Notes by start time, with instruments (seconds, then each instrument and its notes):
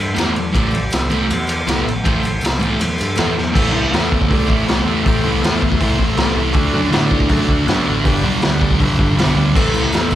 0.00 picked electric bass G2, transistor combo organ A4 C5 E5
0.15 picked electric bass E2, distorted electric guitar A2 E3 A3, ride, tambourine
0.19 transistor combo organ A4 C5 D5, snare
0.34 ride, tambourine
0.53 picked electric bass A1, distorted electric guitar A2 E3 A3, kick, ride, tambourine
0.58 transistor combo organ A4 C5 D5
0.71 ride, tambourine
0.90 picked electric bass C2, transistor combo organ A4 C5 E5, snare, ride, tambourine
1.10 picked electric bass C2, distorted electric guitar A2 E3 A3, ride, tambourine
1.30 picked electric bass E2, transistor combo organ A4 C5 E5, ride, tambourine
1.47 transistor combo organ A4 C5 D5, ride, tambourine
1.66 picked electric bass C2, distorted electric guitar A2 E3 A3, transistor combo organ A4 C5 E5, snare, ride, tambourine
1.85 picked electric bass A1, ride, tambourine
2.04 picked electric bass A1, distorted electric guitar A2 E3 A3, transistor combo organ A4 C5 G5, kick, ride, tambourine
2.23 ride, tambourine
2.41 picked electric bass C2, transistor combo organ A4, ride, tambourine
2.45 transistor combo organ C5 E5, snare
2.59 distorted electric guitar A2 E3 A3, ride, tambourine
2.79 picked electric bass E2, transistor combo organ A4 C5 E5, ride, tambourine
2.95 transistor combo organ A4 C5 E5, tambourine
3.00 picked electric bass G2, ride
3.12 transistor combo organ A4 C5 E5, tambourine
3.16 picked electric bass E2, distorted electric guitar A2 E3 A3, snare, ride
3.36 snare, tambourine
3.52 picked electric bass A1, distorted electric guitar A2 E3 A3, transistor combo organ A4 C5 E5, kick, crash
3.71 picked electric bass C2, distorted electric guitar A2 E3 A3
3.91 picked electric bass E2, distorted electric guitar A2 E3 A3, transistor combo organ A4 C5 E5, snare, open hi-hat
4.10 distorted electric guitar A2 E3 A3, kick
4.22 kick
4.27 picked electric bass C2, distorted electric guitar A2 E3 A3, transistor combo organ A4 C5 D5, kick
4.32 open hi-hat
4.47 picked electric bass A1, distorted electric guitar A2 E3 A3, kick
4.66 picked electric bass C2, distorted electric guitar A2 E3 A3, transistor combo organ A4 C5 E5, snare, open hi-hat
4.85 picked electric bass E2, distorted electric guitar A2 E3 A3
5.03 picked electric bass A1, distorted electric guitar A2 E3 A3, transistor combo organ A4 C5 G5, kick, open hi-hat
5.23 picked electric bass C2, distorted electric guitar A2 E3 A3
5.40 picked electric bass E2, distorted electric guitar A2 E3 A3, transistor combo organ A4 C5 E5, open hi-hat
5.45 snare
5.61 distorted electric guitar A2 E3 A3, kick
5.72 kick
5.77 picked electric bass C2, distorted electric guitar A2, transistor combo organ A4 C5 E5, kick, open hi-hat
5.81 distorted electric guitar E3 A3
5.99 picked electric bass A1, distorted electric guitar A2 E3 A3, kick
6.12 transistor combo organ A4 C5 E5
6.17 picked electric bass C2, distorted electric guitar A2 E3 A3, snare, open hi-hat
6.34 picked electric bass C2, distorted electric guitar A2 E3 A3
6.53 picked electric bass D2, distorted electric guitar D3 A3 D4, transistor combo organ F#4 A4 D5, kick, open hi-hat
6.73 picked electric bass F#2, distorted electric guitar D3 A3 D4
6.90 picked electric bass A2, distorted electric guitar D3 A3 D4, transistor combo organ F#4 A4 D5, snare, open hi-hat
7.11 distorted electric guitar D3 A3 D4, kick
7.20 kick
7.28 picked electric bass F#2, distorted electric guitar D3 A3 D4, transistor combo organ F#4 A4 D5, kick, open hi-hat
7.47 picked electric bass D2, distorted electric guitar D3 A3 D4, kick
7.66 picked electric bass F#2, distorted electric guitar D3 A3 D4, transistor combo organ F#4 A4 B4, snare, open hi-hat
7.86 picked electric bass A1, distorted electric guitar D3 A3 D4
8.04 picked electric bass G1, distorted electric guitar G2 D3 G3, transistor combo organ G4 B4 D5, kick, open hi-hat
8.23 picked electric bass B1, distorted electric guitar G2 D3 G3
8.41 picked electric bass D2, distorted electric guitar G2 D3 G3, transistor combo organ G4 B4 D5, snare, open hi-hat
8.60 distorted electric guitar G2 D3 G3, kick
8.71 kick
8.79 picked electric bass B1, distorted electric guitar G2 D3 G3, transistor combo organ G4, kick, open hi-hat
8.84 transistor combo organ B4 E5
8.98 picked electric bass G1, distorted electric guitar G2 D3 G3, kick
9.16 picked electric bass B1, distorted electric guitar G2 D3 G3, transistor combo organ G4 B4 D5, open hi-hat
9.20 snare
9.35 picked electric bass D2, distorted electric guitar G2 D3 G3
9.54 picked electric bass A1, distorted electric guitar A2 E3 A3, transistor combo organ A4 C5 E5, kick, tambourine, crash
9.73 picked electric bass C2, distorted electric guitar A2 E3 A3, tambourine
9.93 picked electric bass E2, distorted electric guitar A2 E3 A3, transistor combo organ A4 C5 E5, snare, open hi-hat, tambourine
10.11 tambourine